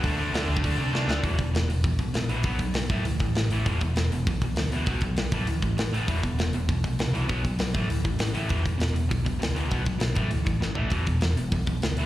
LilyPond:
<<
  \new Staff \with { instrumentName = "Distorted electric guitar" } { \time 4/4 \key a \dorian \tempo 4 = 198 <d a d'>2~ <d a d'>8 <d a d'>8 <d a d'>4 | r1 | r1 | r1 |
r1 | r1 | r1 | r1 |
r1 | r1 | }
  \new Staff \with { instrumentName = "Distorted electric guitar" } { \clef bass \time 4/4 \key a \dorian <d a d'>8 <d a d'>8 <d a d'>8 <d a d'>8 <d a d'>8 <d a d'>8 <d a d'>8 <d a d'>8 | <e, b, e>8 <e, b,>8 <e, b,>8 <e, b,>8 <e, b,>8 <e, b,>8 <e, b,>8 <e, b, e>8 | <b, fis b>8 <b, fis>8 <b, fis>8 <a, e a>8 <a, e>8 <a, e>8 <a, e>8 <a, e a>8 | <e, b, e>8 <e, b,>8 <e, b,>8 <e, b,>8 <e, b,>8 <e, b,>8 <e, b,>8 <e, b, e>8 |
<b, fis b>8 <b, fis>8 <b, fis>8 <a, e a>8 <a, e>8 <a, e>8 <a, e>8 <a, e a>8 | <e, b, e>8 <e, b,>8 <e, b,>8 <e, b,>8 <e, b,>8 <e, b,>8 <e, b,>8 <e, b, e>8 | <b, fis b>8 <b, fis>8 <b, fis>8 <a, e a>8 <a, e>8 <a, e>8 <a, e>8 <a, e a>8 | <e, b, e>8 <e, b,>8 <e, b,>8 <e, b,>8 <e, b,>8 <e, b,>8 <e, b,>8 <e, b, e>8 |
<b, fis b>8 <b, fis>8 <b, fis>8 <a, e a>8 <a, e>8 <a, e>8 <a, e>8 <a, e a>8 | <e, b, e>8 <e, b,>8 <e, b,>8 <e, b,>8 <e, b,>8 <e, b,>8 <e, b,>8 <e, b, e>8 | }
  \new Staff \with { instrumentName = "Picked electric bass" } { \clef bass \time 4/4 \key a \dorian d,4 d,8 d,8 d,8 c8 c8 d,8 | e,,8 e,,8 e,,8 e,,8 b,,4 ais,,4 | b,,4 b,,8 a,,8 d,8 a,,8 a,,8 a,,8 | e,,8 e,,8 e,,8 e,,8 b,,4 d,4 |
b,,4 b,,8 a,,8 d,8 a,,8 a,,8 a,,8 | e,,8 e,,8 e,,8 e,,8 b,,4 c,4 | b,,4 b,,8 a,,8 d,8 a,,8 a,,8 a,,8 | e,,8 e,,8 e,,8 e,,8 b,,4 d,4 |
b,,4 b,,8 a,,8 d,8 a,,8 a,,8 a,,8 | e,,8 e,,8 e,,8 e,,8 b,,4 d,4 | }
  \new DrumStaff \with { instrumentName = "Drums" } \drummode { \time 4/4 <hho bd>4 <hho sn>8. bd16 <hho bd>4 sn8 sn8 | <hho bd>8 <hho bd>8 <hho sn>8 hho8 <hho bd>8 <hho bd>8 <hho sn>8 hho8 | <hho bd>8 <hho bd>8 <hho sn>8 <hho bd>8 hho8 <hho bd>8 <hho sn>8 hho8 | <hho bd>8 <hho bd>8 <hho sn>8 hho8 <hho bd>8 <hho bd>8 <hho sn>8 hho8 |
<hho bd>8 <hho bd>8 <hho sn>8 <hho bd>8 hho8 <hho bd>8 <hho sn>8 hho8 | <hho bd>8 <hho bd>8 <hho sn>8 hho8 <hho bd>8 <hho bd>8 <hho sn>8 hho8 | <hho bd>8 <hho bd>8 <hho sn>8 <hho bd>8 hho8 bd8 <hho sn>8 hho8 | <hho bd>8 <hho bd>8 <hho sn>8 hho8 <hho bd>8 <hho bd>8 <hho sn>8 hho8 |
<hho bd>8 <hho bd>8 <hho sn>8 <hho bd>8 hho8 <hho bd>8 sn8 tomfh8 | <hho bd>8 <hho bd>8 <hho sn>8 hho8 <hho bd>8 <hho bd>8 <hho sn>8 hho8 | }
>>